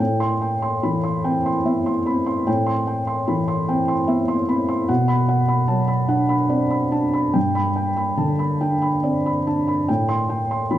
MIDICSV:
0, 0, Header, 1, 2, 480
1, 0, Start_track
1, 0, Tempo, 825309
1, 1437, Time_signature, 6, 3, 24, 8
1, 1437, Tempo, 807537
1, 3837, Tempo, 845070
1, 5757, Tempo, 809717
1, 6288, End_track
2, 0, Start_track
2, 0, Title_t, "Felt piano"
2, 0, Program_c, 0, 0
2, 0, Control_c, 0, 64, 127
2, 0, Note_on_c, 0, 45, 50
2, 0, Note_on_c, 0, 79, 44
2, 7, Control_c, 0, 64, 0
2, 112, Control_c, 0, 64, 127
2, 117, Note_on_c, 0, 84, 54
2, 190, Note_off_c, 0, 79, 0
2, 241, Note_on_c, 0, 79, 40
2, 311, Note_off_c, 0, 84, 0
2, 362, Note_on_c, 0, 84, 42
2, 434, Note_off_c, 0, 79, 0
2, 483, Note_on_c, 0, 52, 38
2, 483, Note_on_c, 0, 83, 38
2, 554, Note_off_c, 0, 84, 0
2, 602, Note_off_c, 0, 83, 0
2, 602, Note_on_c, 0, 84, 42
2, 723, Note_on_c, 0, 60, 40
2, 723, Note_on_c, 0, 79, 43
2, 794, Note_off_c, 0, 84, 0
2, 847, Note_on_c, 0, 84, 42
2, 867, Note_off_c, 0, 52, 0
2, 914, Note_off_c, 0, 79, 0
2, 961, Note_on_c, 0, 59, 34
2, 962, Note_on_c, 0, 76, 45
2, 1035, Note_off_c, 0, 84, 0
2, 1083, Note_on_c, 0, 84, 44
2, 1105, Note_off_c, 0, 60, 0
2, 1152, Note_off_c, 0, 76, 0
2, 1199, Note_off_c, 0, 59, 0
2, 1199, Note_on_c, 0, 83, 39
2, 1203, Note_on_c, 0, 60, 39
2, 1272, Note_off_c, 0, 84, 0
2, 1316, Note_on_c, 0, 84, 41
2, 1318, Note_off_c, 0, 83, 0
2, 1413, Note_off_c, 0, 45, 0
2, 1436, Note_on_c, 0, 79, 47
2, 1437, Note_on_c, 0, 45, 50
2, 1447, Control_c, 0, 64, 0
2, 1509, Note_off_c, 0, 84, 0
2, 1552, Note_on_c, 0, 84, 44
2, 1555, Control_c, 0, 64, 127
2, 1585, Note_off_c, 0, 60, 0
2, 1631, Note_off_c, 0, 79, 0
2, 1675, Note_on_c, 0, 79, 45
2, 1749, Note_off_c, 0, 84, 0
2, 1795, Note_on_c, 0, 84, 43
2, 1870, Note_off_c, 0, 79, 0
2, 1915, Note_on_c, 0, 83, 39
2, 1916, Note_on_c, 0, 52, 39
2, 1989, Note_off_c, 0, 84, 0
2, 2036, Note_on_c, 0, 84, 45
2, 2038, Note_off_c, 0, 83, 0
2, 2159, Note_on_c, 0, 79, 50
2, 2160, Note_on_c, 0, 60, 43
2, 2230, Note_off_c, 0, 84, 0
2, 2275, Note_on_c, 0, 84, 46
2, 2301, Note_off_c, 0, 52, 0
2, 2351, Note_off_c, 0, 79, 0
2, 2392, Note_on_c, 0, 76, 51
2, 2393, Note_on_c, 0, 59, 39
2, 2469, Note_off_c, 0, 84, 0
2, 2513, Note_on_c, 0, 84, 48
2, 2543, Note_off_c, 0, 60, 0
2, 2587, Note_off_c, 0, 76, 0
2, 2635, Note_off_c, 0, 59, 0
2, 2636, Note_on_c, 0, 60, 46
2, 2636, Note_on_c, 0, 83, 42
2, 2707, Note_off_c, 0, 84, 0
2, 2753, Note_on_c, 0, 84, 47
2, 2756, Note_off_c, 0, 83, 0
2, 2852, Note_off_c, 0, 45, 0
2, 2872, Note_on_c, 0, 78, 54
2, 2873, Note_on_c, 0, 47, 59
2, 2874, Note_off_c, 0, 84, 0
2, 2875, Note_off_c, 0, 60, 0
2, 2887, Control_c, 0, 64, 0
2, 2979, Control_c, 0, 64, 127
2, 2988, Note_on_c, 0, 83, 60
2, 3064, Note_off_c, 0, 78, 0
2, 3110, Note_on_c, 0, 78, 49
2, 3182, Note_off_c, 0, 83, 0
2, 3228, Note_on_c, 0, 83, 47
2, 3302, Note_off_c, 0, 78, 0
2, 3343, Note_on_c, 0, 81, 43
2, 3344, Note_on_c, 0, 54, 44
2, 3421, Note_off_c, 0, 83, 0
2, 3461, Note_on_c, 0, 83, 50
2, 3467, Note_off_c, 0, 81, 0
2, 3584, Note_on_c, 0, 62, 44
2, 3586, Note_on_c, 0, 78, 53
2, 3659, Note_off_c, 0, 83, 0
2, 3708, Note_on_c, 0, 83, 49
2, 3734, Note_off_c, 0, 54, 0
2, 3784, Note_off_c, 0, 78, 0
2, 3827, Note_on_c, 0, 60, 42
2, 3828, Note_on_c, 0, 74, 48
2, 3905, Note_off_c, 0, 83, 0
2, 3948, Note_on_c, 0, 83, 45
2, 3976, Note_off_c, 0, 62, 0
2, 4024, Note_off_c, 0, 74, 0
2, 4070, Note_on_c, 0, 81, 42
2, 4071, Note_on_c, 0, 62, 42
2, 4072, Note_off_c, 0, 60, 0
2, 4145, Note_off_c, 0, 83, 0
2, 4193, Note_on_c, 0, 83, 44
2, 4194, Note_off_c, 0, 81, 0
2, 4293, Note_off_c, 0, 47, 0
2, 4306, Note_on_c, 0, 79, 48
2, 4308, Note_on_c, 0, 43, 52
2, 4314, Note_off_c, 0, 62, 0
2, 4315, Note_off_c, 0, 83, 0
2, 4327, Control_c, 0, 64, 0
2, 4429, Note_on_c, 0, 83, 56
2, 4432, Control_c, 0, 64, 127
2, 4503, Note_off_c, 0, 79, 0
2, 4548, Note_on_c, 0, 79, 45
2, 4623, Note_off_c, 0, 83, 0
2, 4664, Note_on_c, 0, 83, 41
2, 4742, Note_off_c, 0, 79, 0
2, 4782, Note_on_c, 0, 50, 38
2, 4784, Note_on_c, 0, 81, 36
2, 4860, Note_off_c, 0, 83, 0
2, 4905, Note_on_c, 0, 83, 40
2, 4909, Note_off_c, 0, 81, 0
2, 5029, Note_on_c, 0, 79, 43
2, 5031, Note_on_c, 0, 62, 38
2, 5103, Note_off_c, 0, 83, 0
2, 5149, Note_on_c, 0, 83, 41
2, 5174, Note_off_c, 0, 50, 0
2, 5225, Note_off_c, 0, 79, 0
2, 5272, Note_on_c, 0, 74, 41
2, 5273, Note_on_c, 0, 60, 35
2, 5346, Note_off_c, 0, 83, 0
2, 5400, Note_on_c, 0, 83, 40
2, 5420, Note_off_c, 0, 62, 0
2, 5467, Note_off_c, 0, 74, 0
2, 5516, Note_off_c, 0, 60, 0
2, 5519, Note_on_c, 0, 81, 34
2, 5520, Note_on_c, 0, 62, 37
2, 5592, Note_off_c, 0, 83, 0
2, 5637, Note_on_c, 0, 83, 37
2, 5638, Note_off_c, 0, 81, 0
2, 5728, Note_off_c, 0, 43, 0
2, 5754, Note_on_c, 0, 79, 49
2, 5755, Note_off_c, 0, 83, 0
2, 5756, Note_off_c, 0, 62, 0
2, 5758, Note_on_c, 0, 45, 50
2, 5766, Control_c, 0, 64, 0
2, 5859, Control_c, 0, 64, 127
2, 5874, Note_on_c, 0, 84, 58
2, 5948, Note_off_c, 0, 79, 0
2, 5998, Note_on_c, 0, 79, 42
2, 6068, Note_off_c, 0, 84, 0
2, 6125, Note_on_c, 0, 84, 42
2, 6189, Note_off_c, 0, 79, 0
2, 6241, Note_on_c, 0, 52, 39
2, 6241, Note_on_c, 0, 83, 37
2, 6288, Note_off_c, 0, 45, 0
2, 6288, Note_off_c, 0, 52, 0
2, 6288, Note_off_c, 0, 83, 0
2, 6288, Note_off_c, 0, 84, 0
2, 6288, End_track
0, 0, End_of_file